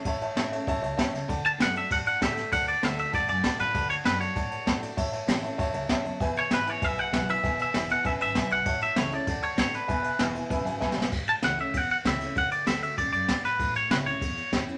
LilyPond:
<<
  \new Staff \with { instrumentName = "Clean electric guitar" } { \time 4/4 \key a \major \tempo 4 = 195 r1 | r8 a''8 fis''8 e''8 fis''8 fis''8 e''4 | fis''8 d''8 e''8 e''8 d''8 d''4 b'8~ | b'8 cis''8 b'8 cis''2 r8 |
r1 | r8 cis''8 b'8 cis''8 e''8 fis''4 e''8~ | e''8 e''4 fis''8 e''8 e''4 fis''8~ | fis''8 e''8 cis''8 d''4 cis''8 cis''8 b'8~ |
b'4. r2 r8 | r8 a''8 fis''8 e''8 fis''8 fis''8 e''4 | fis''8 d''8 e''8 e''8 d''8 d''4 b'8~ | b'8 cis''8 b'8 cis''2 r8 | }
  \new Staff \with { instrumentName = "Upright piano" } { \time 4/4 \key a \major <cis'' e'' a''>8 <cis'' e'' a''>8 <cis'' e'' a''>8 <cis'' e'' a''>8 <cis'' e'' a''>8 <cis'' e'' a''>8 <cis'' e'' a''>8 <cis'' e'' a''>8 | <d'' fis'' a''>8 r8 <d'' a''>8 <d'' fis'' a''>8 <d'' fis'' a''>8 <d'' a''>8 <d'' fis'' a''>8 <fis'' a''>8 | <d'' fis'' a''>8 <d'' fis''>8 <d'' fis'' a''>8 <d'' a''>8 <d'' fis'' a''>8 <d'' fis'' gis''>8 <d'' fis'' a''>8 <d'' a''>8 | <d'' fis'' a''>8 d''8 <d'' a''>8 <d'' fis'' a''>8 <d'' fis'' a''>8 <d'' fis'' a''>8 <d'' fis'' a''>8 <d'' fis'' a''>8 |
<cis'' e'' a''>8 <cis'' e'' a''>8 <cis'' e'' a''>8 <cis'' e'' a''>8 <cis'' e'' a''>8 <cis'' e'' a''>8 <cis'' e'' a''>8 <cis'' e'' a''>8 | <b' e'' gis''>8 <e'' gis''>8 <b' e'' gis''>8 <b' e'' gis''>8 <b' e'' gis''>8 <b' e'' gis''>8 <b' e'' gis''>8 <b' e'' gis''>8 | <b' e'' gis''>8 <b' gis''>8 <b' e'' gis''>8 <b' e'' gis''>8 <b' e'' gis''>8 <b' e'' gis''>8 <b' e'' gis''>8 <b' e'' gis''>8 | <cis'' e'' a''>8 <cis'' e'' a''>8 <cis'' e'' a''>8 <cis'' e'' a''>8 <d'' fis'' a''>8 <d'' fis'' a''>8 <d'' fis'' a''>8 <d'' a''>8 |
<b' e'' gis''>8 <b' e'' gis''>8 <b' e'' gis''>8 <b' e'' gis''>8 <b' e'' gis''>8 <b' e'' gis''>8 <b' e'' gis''>8 <b' e'' gis''>8 | r1 | r1 | r1 | }
  \new Staff \with { instrumentName = "Steel-string acoustic guitar" } { \time 4/4 \key a \major << { r4 <e a cis' e'>8 <cis' e'>8 r2 | r4 <d a d' fis'>8 <d' fis'>8 r4 <d a d' fis'>8 <d' fis'>8 | r4 <d a d' fis'>8 <d' fis'>8 r4 <d a d' fis'>8 <d' fis'>8 | r4 <d a d' fis'>8 <d' fis'>8 r4 <d a d' fis'>8 <d' fis'>8 |
r4 <e a cis' e'>8 <cis' e'>8 r2 | r4 <e gis b e'>8 <b e'>8 r4 <e gis b e'>8 <b e'>8 | r4 <e gis b e'>8 <b e'>8 r2 | r4 <e a cis' e'>8 <cis' e'>8 r4 <d a d' fis'>8 <d' fis'>8 |
r4 <e gis b e'>8 <b e'>8 r2 | r4 <e a cis' e'>8 <cis' e'>8 r4 <e a cis' e'>8 <cis' e'>8 | r4 <d a d' fis'>8 <d' fis'>8 r2 | r4 <e a cis' e'>8 <cis' e'>8 r4 <e a cis' e'>8 <cis' e'>8 | } \\ { a,2 b,4 cis4 | d2 a,2 | d2 a,2 | d2 a,2 |
a,2 gis,4 fis,4 | e,2 b,2 | e,2 fis,4 gis,4 | a,2 d2 |
e,2 fis,4 gis,4 | a,2 e,2 | d2 cis4 gis,4 | a,2 e,2 | } >> }
  \new Staff \with { instrumentName = "Upright bass" } { \clef bass \time 4/4 \key a \major a,,4 a,,4 a,,8 cis,8 e,8 cis,8 | d,4 fis,4 a,4 a,4 | d,4 d,4 d,8 fis,8 a,8 a,8 | d,4 fis,4 a,4 a,4 |
a,,4 a,,4 a,,8 cis,8 e,8 e,8 | e,,4 gis,,4 b,,4 b,,4 | e,,4 e,,4 e,,8 gis,,8 b,,8 b,,8 | a,,4 cis,4 d,4 a,4 |
e,,4 e,,4 e,,8 gis,,8 b,,8 b,,8 | a,,4 cis,4 e,4 cis,4 | d,4 d,4 d,8 fis,8 a,8 a,8 | a,,4 cis,4 e,4 e,4 | }
  \new DrumStaff \with { instrumentName = "Drums" } \drummode { \time 4/4 <bd cymr>8 cymr8 <cymr sn>8 cymr8 <bd cymr>8 cymr8 <bd cymr sn>8 <cymr sn>8 | <bd cymr>8 cymr8 <cymr sn>8 cymr8 <bd cymr>8 cymr8 <bd cymr sn>8 <cymr sn>8 | <bd cymr>8 cymr8 <cymr sn>8 cymr8 <bd cymr>8 cymr8 <bd cymr sn>8 <cymr sn>8 | <bd cymr>8 cymr8 <cymr sn>8 cymr8 <bd cymr>8 cymr8 <bd cymr sn>8 <cymr sn>8 |
<bd cymr>8 cymr8 <cymr sn>8 cymr8 <bd cymr>8 cymr8 <bd cymr sn>8 cymr8 | <bd cymr>8 cymr8 <cymr sn>8 cymr8 <bd cymr>8 cymr8 <bd cymr sn>8 cymr8 | <bd cymr>8 cymr8 <cymr sn>8 cymr8 <bd cymr>8 cymr8 <bd cymr sn>8 cymr8 | <bd cymr>8 cymr8 <cymr sn>8 cymr8 <bd cymr>8 cymr8 <bd cymr sn>8 <cymr sn>8 |
<bd cymr>8 cymr8 <cymr sn>8 cymr8 <bd cymr>8 cymr8 \tuplet 3/2 { <bd sn>8 sn8 sn8 } | <cymc bd>8 cymr8 <cymr sn>8 cymr8 <bd cymr>8 cymr8 <bd cymr sn>8 <cymr sn>8 | <bd cymr>8 cymr8 <cymr sn>8 cymr8 <bd cymr>8 cymr8 <bd cymr sn>8 <cymr sn>8 | <bd cymr>8 cymr8 <cymr sn>8 cymr8 <bd cymr>8 cymr8 <bd cymr sn>8 cymr8 | }
>>